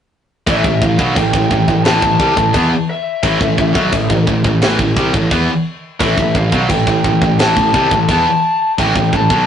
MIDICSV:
0, 0, Header, 1, 5, 480
1, 0, Start_track
1, 0, Key_signature, 0, "minor"
1, 0, Tempo, 692841
1, 330, Time_signature, 4, 2, 24, 8
1, 6557, End_track
2, 0, Start_track
2, 0, Title_t, "Lead electric guitar"
2, 0, Program_c, 0, 29
2, 334, Note_on_c, 0, 76, 88
2, 554, Note_off_c, 0, 76, 0
2, 572, Note_on_c, 0, 77, 92
2, 809, Note_off_c, 0, 77, 0
2, 812, Note_on_c, 0, 79, 101
2, 1274, Note_off_c, 0, 79, 0
2, 1277, Note_on_c, 0, 81, 98
2, 1972, Note_off_c, 0, 81, 0
2, 2013, Note_on_c, 0, 76, 77
2, 2940, Note_off_c, 0, 76, 0
2, 4173, Note_on_c, 0, 76, 98
2, 4410, Note_off_c, 0, 76, 0
2, 4413, Note_on_c, 0, 77, 91
2, 4632, Note_off_c, 0, 77, 0
2, 4641, Note_on_c, 0, 79, 111
2, 5122, Note_off_c, 0, 79, 0
2, 5125, Note_on_c, 0, 81, 100
2, 5578, Note_off_c, 0, 81, 0
2, 5601, Note_on_c, 0, 81, 105
2, 6088, Note_off_c, 0, 81, 0
2, 6091, Note_on_c, 0, 79, 102
2, 6336, Note_off_c, 0, 79, 0
2, 6341, Note_on_c, 0, 81, 102
2, 6557, Note_off_c, 0, 81, 0
2, 6557, End_track
3, 0, Start_track
3, 0, Title_t, "Distorted electric guitar"
3, 0, Program_c, 1, 30
3, 324, Note_on_c, 1, 45, 100
3, 331, Note_on_c, 1, 52, 102
3, 439, Note_off_c, 1, 45, 0
3, 443, Note_off_c, 1, 52, 0
3, 448, Note_on_c, 1, 45, 74
3, 450, Note_on_c, 1, 52, 72
3, 561, Note_off_c, 1, 45, 0
3, 562, Note_off_c, 1, 52, 0
3, 569, Note_on_c, 1, 45, 65
3, 570, Note_on_c, 1, 52, 71
3, 681, Note_off_c, 1, 45, 0
3, 683, Note_on_c, 1, 47, 97
3, 686, Note_off_c, 1, 52, 0
3, 689, Note_on_c, 1, 54, 105
3, 798, Note_off_c, 1, 47, 0
3, 801, Note_off_c, 1, 54, 0
3, 807, Note_on_c, 1, 45, 62
3, 811, Note_on_c, 1, 52, 73
3, 916, Note_off_c, 1, 45, 0
3, 919, Note_off_c, 1, 52, 0
3, 924, Note_on_c, 1, 45, 58
3, 927, Note_on_c, 1, 52, 69
3, 1037, Note_off_c, 1, 45, 0
3, 1041, Note_off_c, 1, 52, 0
3, 1045, Note_on_c, 1, 45, 67
3, 1049, Note_on_c, 1, 52, 75
3, 1158, Note_off_c, 1, 45, 0
3, 1159, Note_off_c, 1, 52, 0
3, 1166, Note_on_c, 1, 45, 63
3, 1167, Note_on_c, 1, 52, 77
3, 1277, Note_off_c, 1, 45, 0
3, 1285, Note_off_c, 1, 52, 0
3, 1285, Note_on_c, 1, 45, 111
3, 1293, Note_on_c, 1, 52, 99
3, 1398, Note_off_c, 1, 45, 0
3, 1402, Note_off_c, 1, 52, 0
3, 1411, Note_on_c, 1, 45, 62
3, 1411, Note_on_c, 1, 52, 74
3, 1522, Note_off_c, 1, 45, 0
3, 1525, Note_off_c, 1, 52, 0
3, 1525, Note_on_c, 1, 48, 93
3, 1527, Note_on_c, 1, 55, 96
3, 1638, Note_off_c, 1, 48, 0
3, 1639, Note_off_c, 1, 55, 0
3, 1643, Note_on_c, 1, 45, 72
3, 1648, Note_on_c, 1, 52, 66
3, 1752, Note_off_c, 1, 52, 0
3, 1757, Note_off_c, 1, 45, 0
3, 1760, Note_on_c, 1, 52, 89
3, 1766, Note_on_c, 1, 59, 87
3, 1875, Note_off_c, 1, 52, 0
3, 1878, Note_off_c, 1, 59, 0
3, 2238, Note_on_c, 1, 45, 97
3, 2242, Note_on_c, 1, 52, 106
3, 2352, Note_off_c, 1, 52, 0
3, 2354, Note_off_c, 1, 45, 0
3, 2360, Note_on_c, 1, 52, 76
3, 2362, Note_on_c, 1, 45, 70
3, 2469, Note_off_c, 1, 45, 0
3, 2473, Note_off_c, 1, 52, 0
3, 2477, Note_on_c, 1, 45, 61
3, 2482, Note_on_c, 1, 52, 77
3, 2588, Note_off_c, 1, 45, 0
3, 2591, Note_on_c, 1, 47, 102
3, 2594, Note_off_c, 1, 52, 0
3, 2597, Note_on_c, 1, 54, 97
3, 2710, Note_off_c, 1, 47, 0
3, 2713, Note_off_c, 1, 54, 0
3, 2722, Note_on_c, 1, 45, 66
3, 2727, Note_on_c, 1, 52, 70
3, 2832, Note_off_c, 1, 45, 0
3, 2835, Note_off_c, 1, 52, 0
3, 2840, Note_on_c, 1, 45, 66
3, 2843, Note_on_c, 1, 52, 69
3, 2951, Note_off_c, 1, 45, 0
3, 2958, Note_off_c, 1, 52, 0
3, 2959, Note_on_c, 1, 45, 64
3, 2966, Note_on_c, 1, 52, 71
3, 3075, Note_off_c, 1, 45, 0
3, 3079, Note_off_c, 1, 52, 0
3, 3083, Note_on_c, 1, 45, 64
3, 3087, Note_on_c, 1, 52, 72
3, 3192, Note_off_c, 1, 45, 0
3, 3198, Note_off_c, 1, 52, 0
3, 3200, Note_on_c, 1, 45, 92
3, 3207, Note_on_c, 1, 52, 117
3, 3311, Note_off_c, 1, 45, 0
3, 3317, Note_off_c, 1, 52, 0
3, 3320, Note_on_c, 1, 45, 59
3, 3326, Note_on_c, 1, 52, 73
3, 3437, Note_off_c, 1, 45, 0
3, 3440, Note_on_c, 1, 48, 89
3, 3444, Note_off_c, 1, 52, 0
3, 3447, Note_on_c, 1, 55, 110
3, 3554, Note_off_c, 1, 48, 0
3, 3558, Note_off_c, 1, 55, 0
3, 3562, Note_on_c, 1, 45, 66
3, 3563, Note_on_c, 1, 52, 78
3, 3674, Note_off_c, 1, 52, 0
3, 3680, Note_off_c, 1, 45, 0
3, 3682, Note_on_c, 1, 52, 90
3, 3689, Note_on_c, 1, 59, 97
3, 3795, Note_off_c, 1, 52, 0
3, 3798, Note_off_c, 1, 59, 0
3, 4155, Note_on_c, 1, 45, 98
3, 4164, Note_on_c, 1, 52, 118
3, 4272, Note_off_c, 1, 45, 0
3, 4276, Note_off_c, 1, 52, 0
3, 4285, Note_on_c, 1, 45, 69
3, 4287, Note_on_c, 1, 52, 80
3, 4393, Note_off_c, 1, 45, 0
3, 4395, Note_off_c, 1, 52, 0
3, 4402, Note_on_c, 1, 45, 63
3, 4404, Note_on_c, 1, 52, 73
3, 4516, Note_off_c, 1, 45, 0
3, 4519, Note_off_c, 1, 52, 0
3, 4519, Note_on_c, 1, 47, 102
3, 4522, Note_on_c, 1, 54, 99
3, 4634, Note_off_c, 1, 47, 0
3, 4636, Note_off_c, 1, 54, 0
3, 4641, Note_on_c, 1, 45, 69
3, 4646, Note_on_c, 1, 52, 70
3, 4756, Note_off_c, 1, 45, 0
3, 4759, Note_off_c, 1, 52, 0
3, 4764, Note_on_c, 1, 45, 64
3, 4768, Note_on_c, 1, 52, 72
3, 4873, Note_off_c, 1, 45, 0
3, 4876, Note_off_c, 1, 52, 0
3, 4882, Note_on_c, 1, 45, 65
3, 4884, Note_on_c, 1, 52, 64
3, 4992, Note_off_c, 1, 45, 0
3, 4997, Note_off_c, 1, 52, 0
3, 5001, Note_on_c, 1, 45, 71
3, 5005, Note_on_c, 1, 52, 67
3, 5118, Note_off_c, 1, 45, 0
3, 5122, Note_off_c, 1, 52, 0
3, 5126, Note_on_c, 1, 45, 109
3, 5131, Note_on_c, 1, 52, 105
3, 5234, Note_off_c, 1, 45, 0
3, 5237, Note_off_c, 1, 52, 0
3, 5243, Note_on_c, 1, 45, 60
3, 5245, Note_on_c, 1, 52, 74
3, 5359, Note_off_c, 1, 45, 0
3, 5362, Note_on_c, 1, 48, 104
3, 5365, Note_off_c, 1, 52, 0
3, 5369, Note_on_c, 1, 55, 101
3, 5476, Note_off_c, 1, 48, 0
3, 5480, Note_off_c, 1, 55, 0
3, 5488, Note_on_c, 1, 45, 66
3, 5491, Note_on_c, 1, 52, 77
3, 5602, Note_off_c, 1, 52, 0
3, 5606, Note_off_c, 1, 45, 0
3, 5611, Note_on_c, 1, 52, 100
3, 5618, Note_on_c, 1, 59, 93
3, 5721, Note_off_c, 1, 52, 0
3, 5725, Note_off_c, 1, 59, 0
3, 6094, Note_on_c, 1, 45, 97
3, 6098, Note_on_c, 1, 52, 117
3, 6203, Note_off_c, 1, 45, 0
3, 6203, Note_off_c, 1, 52, 0
3, 6211, Note_on_c, 1, 45, 70
3, 6212, Note_on_c, 1, 52, 72
3, 6323, Note_off_c, 1, 45, 0
3, 6325, Note_off_c, 1, 52, 0
3, 6331, Note_on_c, 1, 45, 66
3, 6333, Note_on_c, 1, 52, 67
3, 6444, Note_off_c, 1, 45, 0
3, 6447, Note_on_c, 1, 47, 92
3, 6448, Note_off_c, 1, 52, 0
3, 6451, Note_on_c, 1, 54, 107
3, 6557, Note_off_c, 1, 47, 0
3, 6557, Note_off_c, 1, 54, 0
3, 6557, End_track
4, 0, Start_track
4, 0, Title_t, "Picked electric bass"
4, 0, Program_c, 2, 34
4, 328, Note_on_c, 2, 33, 84
4, 440, Note_off_c, 2, 33, 0
4, 448, Note_on_c, 2, 33, 83
4, 560, Note_off_c, 2, 33, 0
4, 568, Note_on_c, 2, 33, 77
4, 679, Note_off_c, 2, 33, 0
4, 683, Note_on_c, 2, 35, 87
4, 797, Note_off_c, 2, 35, 0
4, 805, Note_on_c, 2, 33, 83
4, 918, Note_off_c, 2, 33, 0
4, 926, Note_on_c, 2, 33, 85
4, 1038, Note_off_c, 2, 33, 0
4, 1045, Note_on_c, 2, 33, 79
4, 1157, Note_off_c, 2, 33, 0
4, 1163, Note_on_c, 2, 33, 82
4, 1276, Note_off_c, 2, 33, 0
4, 1285, Note_on_c, 2, 33, 102
4, 1397, Note_off_c, 2, 33, 0
4, 1402, Note_on_c, 2, 33, 87
4, 1515, Note_off_c, 2, 33, 0
4, 1519, Note_on_c, 2, 36, 93
4, 1634, Note_off_c, 2, 36, 0
4, 1642, Note_on_c, 2, 33, 73
4, 1755, Note_off_c, 2, 33, 0
4, 1761, Note_on_c, 2, 40, 98
4, 1875, Note_off_c, 2, 40, 0
4, 2239, Note_on_c, 2, 33, 87
4, 2353, Note_off_c, 2, 33, 0
4, 2359, Note_on_c, 2, 33, 85
4, 2473, Note_off_c, 2, 33, 0
4, 2482, Note_on_c, 2, 33, 72
4, 2594, Note_off_c, 2, 33, 0
4, 2599, Note_on_c, 2, 35, 96
4, 2713, Note_off_c, 2, 35, 0
4, 2721, Note_on_c, 2, 33, 89
4, 2833, Note_off_c, 2, 33, 0
4, 2840, Note_on_c, 2, 33, 79
4, 2953, Note_off_c, 2, 33, 0
4, 2962, Note_on_c, 2, 33, 85
4, 3074, Note_off_c, 2, 33, 0
4, 3078, Note_on_c, 2, 33, 82
4, 3192, Note_off_c, 2, 33, 0
4, 3197, Note_on_c, 2, 33, 94
4, 3311, Note_off_c, 2, 33, 0
4, 3322, Note_on_c, 2, 33, 88
4, 3434, Note_off_c, 2, 33, 0
4, 3441, Note_on_c, 2, 36, 101
4, 3553, Note_off_c, 2, 36, 0
4, 3560, Note_on_c, 2, 33, 82
4, 3673, Note_off_c, 2, 33, 0
4, 3680, Note_on_c, 2, 40, 104
4, 3793, Note_off_c, 2, 40, 0
4, 4160, Note_on_c, 2, 33, 91
4, 4273, Note_off_c, 2, 33, 0
4, 4276, Note_on_c, 2, 33, 88
4, 4391, Note_off_c, 2, 33, 0
4, 4397, Note_on_c, 2, 33, 81
4, 4511, Note_off_c, 2, 33, 0
4, 4518, Note_on_c, 2, 35, 102
4, 4632, Note_off_c, 2, 35, 0
4, 4640, Note_on_c, 2, 33, 79
4, 4753, Note_off_c, 2, 33, 0
4, 4758, Note_on_c, 2, 33, 87
4, 4872, Note_off_c, 2, 33, 0
4, 4877, Note_on_c, 2, 33, 86
4, 4992, Note_off_c, 2, 33, 0
4, 4998, Note_on_c, 2, 33, 83
4, 5113, Note_off_c, 2, 33, 0
4, 5121, Note_on_c, 2, 33, 99
4, 5234, Note_off_c, 2, 33, 0
4, 5243, Note_on_c, 2, 33, 87
4, 5355, Note_off_c, 2, 33, 0
4, 5361, Note_on_c, 2, 36, 88
4, 5474, Note_off_c, 2, 36, 0
4, 5482, Note_on_c, 2, 33, 84
4, 5595, Note_off_c, 2, 33, 0
4, 5606, Note_on_c, 2, 40, 97
4, 5717, Note_off_c, 2, 40, 0
4, 6086, Note_on_c, 2, 33, 93
4, 6198, Note_off_c, 2, 33, 0
4, 6205, Note_on_c, 2, 33, 81
4, 6318, Note_off_c, 2, 33, 0
4, 6325, Note_on_c, 2, 33, 80
4, 6438, Note_off_c, 2, 33, 0
4, 6445, Note_on_c, 2, 35, 90
4, 6557, Note_off_c, 2, 35, 0
4, 6557, End_track
5, 0, Start_track
5, 0, Title_t, "Drums"
5, 326, Note_on_c, 9, 49, 68
5, 327, Note_on_c, 9, 36, 113
5, 396, Note_off_c, 9, 36, 0
5, 396, Note_off_c, 9, 49, 0
5, 446, Note_on_c, 9, 36, 94
5, 515, Note_off_c, 9, 36, 0
5, 566, Note_on_c, 9, 36, 97
5, 635, Note_off_c, 9, 36, 0
5, 685, Note_on_c, 9, 36, 110
5, 755, Note_off_c, 9, 36, 0
5, 806, Note_on_c, 9, 36, 96
5, 807, Note_on_c, 9, 49, 65
5, 875, Note_off_c, 9, 36, 0
5, 876, Note_off_c, 9, 49, 0
5, 925, Note_on_c, 9, 36, 97
5, 994, Note_off_c, 9, 36, 0
5, 1045, Note_on_c, 9, 36, 78
5, 1114, Note_off_c, 9, 36, 0
5, 1164, Note_on_c, 9, 36, 92
5, 1233, Note_off_c, 9, 36, 0
5, 1282, Note_on_c, 9, 49, 67
5, 1289, Note_on_c, 9, 38, 127
5, 1351, Note_off_c, 9, 49, 0
5, 1358, Note_off_c, 9, 38, 0
5, 1402, Note_on_c, 9, 36, 98
5, 1471, Note_off_c, 9, 36, 0
5, 1522, Note_on_c, 9, 36, 115
5, 1591, Note_off_c, 9, 36, 0
5, 1642, Note_on_c, 9, 36, 105
5, 1711, Note_off_c, 9, 36, 0
5, 1761, Note_on_c, 9, 36, 116
5, 1765, Note_on_c, 9, 49, 61
5, 1831, Note_off_c, 9, 36, 0
5, 1835, Note_off_c, 9, 49, 0
5, 2238, Note_on_c, 9, 49, 64
5, 2240, Note_on_c, 9, 36, 107
5, 2307, Note_off_c, 9, 49, 0
5, 2309, Note_off_c, 9, 36, 0
5, 2361, Note_on_c, 9, 36, 97
5, 2430, Note_off_c, 9, 36, 0
5, 2481, Note_on_c, 9, 36, 92
5, 2550, Note_off_c, 9, 36, 0
5, 2600, Note_on_c, 9, 36, 104
5, 2669, Note_off_c, 9, 36, 0
5, 2719, Note_on_c, 9, 49, 62
5, 2720, Note_on_c, 9, 36, 98
5, 2788, Note_off_c, 9, 49, 0
5, 2789, Note_off_c, 9, 36, 0
5, 2840, Note_on_c, 9, 36, 99
5, 2909, Note_off_c, 9, 36, 0
5, 2960, Note_on_c, 9, 36, 83
5, 3030, Note_off_c, 9, 36, 0
5, 3079, Note_on_c, 9, 36, 94
5, 3148, Note_off_c, 9, 36, 0
5, 3198, Note_on_c, 9, 49, 68
5, 3205, Note_on_c, 9, 38, 120
5, 3267, Note_off_c, 9, 49, 0
5, 3274, Note_off_c, 9, 38, 0
5, 3319, Note_on_c, 9, 36, 104
5, 3388, Note_off_c, 9, 36, 0
5, 3440, Note_on_c, 9, 36, 110
5, 3510, Note_off_c, 9, 36, 0
5, 3561, Note_on_c, 9, 36, 94
5, 3630, Note_off_c, 9, 36, 0
5, 3680, Note_on_c, 9, 36, 108
5, 3681, Note_on_c, 9, 49, 53
5, 3750, Note_off_c, 9, 36, 0
5, 3750, Note_off_c, 9, 49, 0
5, 4160, Note_on_c, 9, 36, 111
5, 4160, Note_on_c, 9, 49, 64
5, 4229, Note_off_c, 9, 36, 0
5, 4229, Note_off_c, 9, 49, 0
5, 4279, Note_on_c, 9, 36, 84
5, 4348, Note_off_c, 9, 36, 0
5, 4398, Note_on_c, 9, 36, 101
5, 4468, Note_off_c, 9, 36, 0
5, 4519, Note_on_c, 9, 36, 102
5, 4588, Note_off_c, 9, 36, 0
5, 4638, Note_on_c, 9, 49, 59
5, 4639, Note_on_c, 9, 36, 101
5, 4707, Note_off_c, 9, 49, 0
5, 4709, Note_off_c, 9, 36, 0
5, 4760, Note_on_c, 9, 36, 100
5, 4829, Note_off_c, 9, 36, 0
5, 4880, Note_on_c, 9, 36, 89
5, 4950, Note_off_c, 9, 36, 0
5, 5000, Note_on_c, 9, 36, 91
5, 5069, Note_off_c, 9, 36, 0
5, 5121, Note_on_c, 9, 49, 77
5, 5128, Note_on_c, 9, 38, 126
5, 5190, Note_off_c, 9, 49, 0
5, 5197, Note_off_c, 9, 38, 0
5, 5242, Note_on_c, 9, 36, 90
5, 5311, Note_off_c, 9, 36, 0
5, 5363, Note_on_c, 9, 36, 103
5, 5432, Note_off_c, 9, 36, 0
5, 5482, Note_on_c, 9, 36, 98
5, 5552, Note_off_c, 9, 36, 0
5, 5603, Note_on_c, 9, 36, 111
5, 5606, Note_on_c, 9, 49, 63
5, 5672, Note_off_c, 9, 36, 0
5, 5675, Note_off_c, 9, 49, 0
5, 6085, Note_on_c, 9, 36, 103
5, 6087, Note_on_c, 9, 49, 68
5, 6155, Note_off_c, 9, 36, 0
5, 6156, Note_off_c, 9, 49, 0
5, 6205, Note_on_c, 9, 36, 94
5, 6274, Note_off_c, 9, 36, 0
5, 6325, Note_on_c, 9, 36, 93
5, 6394, Note_off_c, 9, 36, 0
5, 6444, Note_on_c, 9, 36, 107
5, 6514, Note_off_c, 9, 36, 0
5, 6557, End_track
0, 0, End_of_file